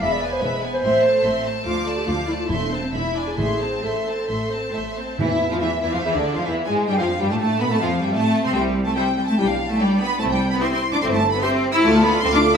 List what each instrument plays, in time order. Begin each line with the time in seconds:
0.01 double bass section E1, cello section E2, viola section G#3, violin section E5 B5, clarinet E5
0.13 clarinet D5
0.22 viola section B3, violin section B4 G#5
0.33 clarinet C5
0.42 double bass section E1, cello section E2, viola section G#3, clarinet B4, violin section E5 B5
0.62 viola section B3, violin section B4 G#5
0.74 clarinet C5
0.83 double bass section A1, cello section A2, viola section C4, violin section E5 C6
1.04 viola section A3, violin section C5 A5
1.23 double bass section A1, cello section A2, viola section C4, violin section E5 C6
1.45 viola section A3, violin section C5 A5
1.65 double bass section D2, cello section D2, viola section F3, clarinet F4, violin section F5 D6
1.86 viola section A3, violin section D5 A5
1.98 clarinet G4
2.07 double bass section D2, cello section D2, viola section F3, clarinet F4, violin section F5 D6
2.28 viola section A3, clarinet E4, violin section D5 A5
2.39 clarinet F4
2.48 double bass section E1, timpani E2, cello section E2, viola section A3, clarinet E4, violin section E5 C6
2.61 clarinet D4
2.70 viola section C4, violin section C5 A5
2.83 clarinet C4
2.92 double bass section E1, cello section E2, clarinet D4, viola section E4, violin section E5 B5
3.04 clarinet E4
3.15 viola section D4, violin section D5 G#5
3.27 clarinet G#4
3.37 double bass section A1, timpani A2, cello section A2, viola section A3, clarinet G#4, violin section E5 C6
3.60 viola section C4, violin section C5 A5
3.83 double bass section A1, cello section A2, viola section A3, clarinet A4, violin section E5 C6
4.07 viola section C4, violin section C5 A5
4.28 double bass section A1, cello section A2, viola section A3, violin section E5 C6
4.50 viola section C4, violin section C5 A5
4.74 double bass section A1, cello section A2, viola section A3, violin section E5 C6
4.96 viola section C4, violin section C5 A5
5.19 double bass section E2, timpani A2, french horn section E3, cello section E3, viola section E3, clarinet E4, violin section E4 E5, flute section E5
5.50 double bass section F2, french horn section F3, viola section F3, cello section F3, violin section F4 F5, flute section F5
5.59 double bass section E2, french horn section E3, cello section E3, viola section E3, violin section E4 E5, flute section E5
5.82 double bass section E2, french horn section E3, cello section E3, viola section E3, violin section E4 E5, flute section E5
5.93 double bass section F2, cello section F3, viola section F3, french horn section F3, violin section F4 F5, flute section F5
6.03 double bass section E2, cello section E3, viola section E3, french horn section E3, violin section E4 E5, clarinet G#4, flute section E5
6.13 double bass section D2, cello section D3, viola section D3, violin section D4 D5, flute section D5
6.18 french horn section D3
6.35 double bass section F2, cello section F3, viola section F3, french horn section F3, violin section F4 F5, flute section F5
6.46 double bass section E2, cello section E3, viola section E3, french horn section E3, clarinet E4, violin section E4 E5, flute section E5
6.65 double bass section G#2, viola section G#3, cello section G#3, violin section G#3 G#5, french horn section G#3, flute section G#5
6.87 double bass section G2, viola section G3, french horn section G3, cello section G3, violin section G3 G5, clarinet D4, flute section G5
6.99 double bass section F2, french horn section F3, viola section F3, cello section F3, violin section F4 F5, flute section F5
7.20 double bass section G2, french horn section G3, viola section G3, violin section G3 G5, cello section G3, flute section G5
7.30 double bass section A2, viola section A3, violin section A3 A5, french horn section A3, cello section A3, flute section A5
7.39 double bass section A2, violin section A3 A5, viola section A3, french horn section A3, cello section A3, flute section A5
7.61 double bass section B2, violin section B3 B5, cello section B3, viola section B3, french horn section B3, flute section B5
7.71 double bass section A2, french horn section A3, violin section A3 A5, viola section A3, cello section A3, clarinet C4, flute section A5
7.80 double bass section F2, french horn section F3, viola section F3, cello section F3, violin section F4 F5, flute section F5
8.02 double bass section G2, violin section G3 G5, french horn section G3, cello section G3, viola section G3, flute section G5
8.12 double bass section A2, cello section A3, french horn section A3, violin section A3 A5, viola section A3, flute section A5
8.44 double bass section C3, violin section C4 C6, cello section C4, viola section C4, french horn section C4, flute section C6
8.54 double bass section C2, cello section G3, french horn section E4 G4, flute section G5, violin section G5
8.85 cello section A3, violin section A5, flute section A5
8.95 cello section G3, viola section E4 C5, violin section E5 G5, flute section G5
9.16 cello section G3, flute section G5, violin section G5
9.26 cello section A3, violin section A5, flute section A5
9.37 double bass section B1, cello section G3, french horn section D4 G4, clarinet E4, flute section G5, violin section G5
9.47 cello section F3, flute section F5, violin section F5
9.68 cello section A3, violin section A5, flute section A5
9.79 cello section G3, clarinet D4, viola section G4 D5, violin section D5 G5, flute section G5
9.99 cello section B3, violin section B5, flute section B5
10.19 double bass section C2, cello section A3, clarinet C4, french horn section E4 C5, violin section A5, flute section A5
10.30 cello section G3, violin section G5, flute section G5
10.51 cello section B3, violin section B5, flute section B5
10.61 cello section C4, clarinet E4, viola section G4 C5, violin section E5 C6, flute section C6
10.72 cello section C4, violin section C6, flute section C6
10.93 cello section D4, violin section D6, flute section D6
11.01 double bass section G1, cello section C4, french horn section E4 C5, clarinet A4, violin section C6, flute section C6
11.12 cello section A3, violin section A5, flute section A5
11.31 cello section B3, violin section B5, flute section B5
11.42 cello section C4, clarinet G4, viola section G4 C5, violin section E5 C6, flute section C6
11.73 cello section E4, violin section E6, flute section E6
11.81 double bass section D2, cello section A3, viola section D4 A4, french horn section F4 A4, clarinet F4, violin section A5, flute section A5
11.85 violin section F5
11.94 viola section F4, violin section D5
12.01 cello section B3, viola section D4 A4, violin section B5
12.05 violin section F5, flute section B5
12.14 viola section F4, violin section D5
12.21 double bass section D2, cello section C4, viola section D4 A4, violin section C6, flute section C6
12.26 violin section F5
12.32 cello section D4, viola section F4, violin section D5 D6, flute section D6
12.45 viola section D4 A4, violin section F5